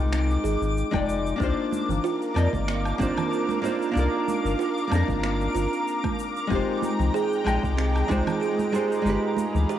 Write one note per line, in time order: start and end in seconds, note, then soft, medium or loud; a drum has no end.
0.00 0.37 C2 medium
0.00 0.88 G#3 medium
0.00 0.89 D#4 medium
0.00 0.90 F4 medium
0.00 0.92 A#4 medium
0.00 0.91 G5 medium
0.00 9.79 D6 medium
0.12 0.43 C4 medium
0.12 finger snap medium
0.12 shaker soft
0.30 shaker soft
0.44 0.56 G#1 medium
0.44 0.73 G#4 medium
0.44 shaker medium
0.61 0.83 G#1 medium
0.61 shaker soft
0.77 shaker soft
0.91 1.33 F1 medium
0.91 1.35 G#3 medium
0.91 1.36 D#4 medium
0.91 1.36 F4 medium
0.91 1.37 G5 medium
0.91 kick loud
0.91 high conga loud
0.91 low woodblock medium
0.91 shaker soft
0.95 1.37 D5 medium
1.09 shaker medium
1.26 shaker soft
1.36 2.30 A#3 medium
1.36 2.31 D4 medium
1.36 2.32 D#4 medium
1.36 6.46 A#4 medium
1.36 6.46 F5 medium
1.36 9.79 A#5 medium
1.36 6.46 D6 medium
1.40 1.52 C2 loud
1.40 1.58 A#3 medium
1.40 2.33 F4 medium
1.40 2.34 C5 loud
1.40 kick loud
1.40 shaker soft
1.72 high conga loud
1.72 shaker medium
1.89 1.99 G1 medium
1.89 low conga medium
1.89 shaker soft
2.04 2.33 F4 loud
2.04 shaker soft
2.22 shaker soft
2.34 2.48 F2 medium
2.34 2.95 A#3 medium
2.34 2.54 C4 medium
2.34 2.96 D#4 medium
2.34 2.97 F4 medium
2.34 2.96 D5 medium
2.34 2.97 D#5 medium
2.34 low woodblock medium
2.34 shaker medium
2.53 2.93 G1 medium
2.53 kick medium
2.53 high conga medium
2.53 shaker soft
2.68 2.98 A#3 medium
2.68 finger snap medium
2.68 shaker soft
2.86 low woodblock medium
2.86 shaker soft
2.98 3.12 G1 medium
2.98 3.59 A#3 loud
2.98 3.18 C4 loud
2.98 3.60 D4 loud
2.98 3.60 D#4 medium
2.98 3.61 F4 medium
2.98 kick loud
2.98 shaker medium
3.02 3.61 C5 loud
3.18 low conga medium
3.18 low woodblock medium
3.18 shaker soft
3.31 3.60 F4 medium
3.31 shaker soft
3.49 high conga medium
3.49 shaker soft
3.62 3.90 A#3 medium
3.62 3.91 D4 medium
3.62 3.92 D#4 medium
3.62 3.93 F4 loud
3.62 3.92 F4 medium
3.62 3.93 C5 loud
3.62 shaker medium
3.82 shaker soft
3.91 4.86 A#3 medium
3.91 4.86 D4 medium
3.91 4.87 D#4 medium
3.96 4.08 C2 loud
3.96 4.88 F4 medium
3.96 4.89 A#4 loud
3.96 shaker soft
4.28 high conga medium
4.28 shaker medium
4.44 4.55 G1 medium
4.44 shaker soft
4.59 4.88 F4 loud
4.59 shaker soft
4.78 shaker soft
4.87 6.45 A#3 medium
4.87 5.09 C4 medium
4.87 6.46 D4 medium
4.87 6.47 D#4 medium
4.92 5.03 F2 medium
4.92 6.48 F4 medium
4.92 6.49 A#4 loud
4.92 low woodblock medium
4.92 shaker medium
5.08 5.48 G1 medium
5.08 kick medium
5.08 high conga medium
5.08 shaker soft
5.23 5.53 A#3 medium
5.23 finger snap medium
5.23 shaker soft
5.41 shaker soft
5.55 5.67 G1 medium
5.55 5.84 F4 medium
5.55 shaker medium
5.73 shaker soft
5.88 shaker soft
6.04 kick loud
6.04 high conga loud
6.04 low woodblock medium
6.04 shaker soft
6.19 shaker medium
6.36 shaker soft
6.47 6.63 F1 medium
6.47 7.41 G#3 medium
6.47 9.79 G#3 medium
6.47 6.69 C4 medium
6.47 7.42 D#4 medium
6.47 7.43 F4 medium
6.47 9.03 G5 medium
6.47 kick loud
6.51 7.44 G4 medium
6.51 7.45 C5 loud
6.51 shaker soft
6.82 high conga medium
6.82 shaker medium
6.99 7.10 C2 medium
6.99 low conga medium
6.99 shaker soft
7.14 7.43 G#4 loud
7.14 shaker soft
7.33 shaker soft
7.44 7.58 A#1 medium
7.44 8.06 G#3 medium
7.44 8.06 D#4 medium
7.44 7.65 D#4 medium
7.44 8.07 F4 medium
7.44 8.07 D#5 medium
7.44 8.07 G5 medium
7.44 low woodblock medium
7.44 shaker medium
7.63 8.03 C2 medium
7.63 kick medium
7.63 high conga medium
7.63 shaker soft
7.78 8.08 C4 medium
7.78 finger snap medium
7.78 shaker soft
7.96 low woodblock medium
7.96 shaker soft
8.08 8.22 C2 medium
8.08 8.69 G#3 loud
8.08 8.70 D#4 medium
8.08 8.28 D#4 medium
8.08 8.70 F4 loud
8.08 8.71 C5 loud
8.08 8.71 G5 medium
8.08 kick medium
8.08 shaker medium
8.27 low conga medium
8.27 low woodblock medium
8.27 shaker soft
8.41 8.71 G#4 medium
8.41 shaker soft
8.59 high conga medium
8.59 shaker soft
8.72 9.01 G#3 loud
8.72 9.02 D#4 medium
8.72 9.02 F4 medium
8.72 9.03 G4 medium
8.72 9.03 G#4 loud
8.72 9.03 C5 loud
8.72 shaker medium
8.92 shaker soft
9.02 9.18 G1 loud
9.02 9.79 G#3 loud
9.02 9.79 D#4 medium
9.02 9.79 F4 medium
9.02 9.79 F5 medium
9.02 9.79 B5 medium
9.06 9.79 G4 medium
9.06 9.79 B4 loud
9.06 shaker soft
9.37 high conga loud
9.37 shaker medium
9.55 9.65 D2 medium
9.55 low conga medium
9.55 shaker soft
9.69 9.79 G4 loud
9.69 shaker soft